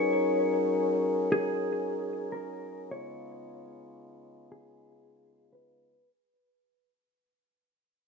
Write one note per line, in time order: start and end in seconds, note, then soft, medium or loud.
0.00 2.89 F#3 medium
0.00 2.89 C#4 medium
0.00 2.88 D#4 medium
0.00 2.89 G#4 medium
0.00 2.89 A#4 medium
0.00 1.28 C#5 loud
1.32 2.28 G#4 loud
2.32 2.88 A#4 medium
2.91 6.08 C#3 medium
2.91 6.08 G#3 medium
2.91 6.08 B3 medium
2.91 6.08 D#4 medium
2.91 6.08 F4 medium
2.91 4.48 C#5 loud
4.52 5.48 G#4 loud
5.53 6.09 B4 medium